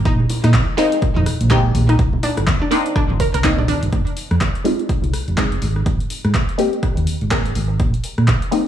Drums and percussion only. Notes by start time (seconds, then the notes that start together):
0.05 kick, closed hi-hat
0.20 low conga
0.30 open hi-hat, high bongo
0.44 cross-stick, closed hi-hat, high bongo
0.53 kick, clap, closed hi-hat, high conga
0.78 open hi-hat
0.92 closed hi-hat
1.02 kick, closed hi-hat, high bongo
1.16 high conga, low conga
1.26 cross-stick, open hi-hat
1.41 closed hi-hat
1.51 kick, clap, closed hi-hat
1.75 open hi-hat, high conga
1.89 cross-stick, closed hi-hat
1.99 kick, closed hi-hat
2.13 low conga
2.23 open hi-hat, high bongo
2.37 cross-stick, closed hi-hat, high bongo
2.47 kick, clap, closed hi-hat, high conga
2.71 open hi-hat
2.86 closed hi-hat
2.96 kick, cross-stick, closed hi-hat
3.10 high conga
3.20 kick, open hi-hat
3.34 closed hi-hat
3.44 kick, clap, closed hi-hat
3.58 high bongo, low conga
3.68 open hi-hat, high conga
3.83 closed hi-hat
3.93 kick, closed hi-hat
4.07 closed hi-hat
4.17 open hi-hat
4.31 cross-stick, closed hi-hat
4.41 kick, clap, closed hi-hat
4.55 closed hi-hat
4.65 open hi-hat
4.79 closed hi-hat
4.89 kick, closed hi-hat
5.04 closed hi-hat
5.14 cross-stick, open hi-hat
5.28 closed hi-hat
5.38 kick, clap, closed hi-hat
5.52 closed hi-hat
5.62 open hi-hat
5.76 cross-stick
5.86 kick, closed hi-hat
6.00 closed hi-hat
6.10 open hi-hat
6.25 cross-stick
6.34 kick, clap, closed hi-hat
6.49 closed hi-hat
6.59 open hi-hat
6.73 closed hi-hat
6.83 kick, cross-stick, closed hi-hat
6.97 closed hi-hat
7.07 open hi-hat
7.21 closed hi-hat
7.31 kick, clap, closed hi-hat
7.45 closed hi-hat
7.55 open hi-hat
7.80 kick, closed hi-hat
7.94 closed hi-hat
8.04 open hi-hat
8.18 cross-stick, closed hi-hat
8.28 kick, clap, closed hi-hat
8.42 closed hi-hat
8.52 open hi-hat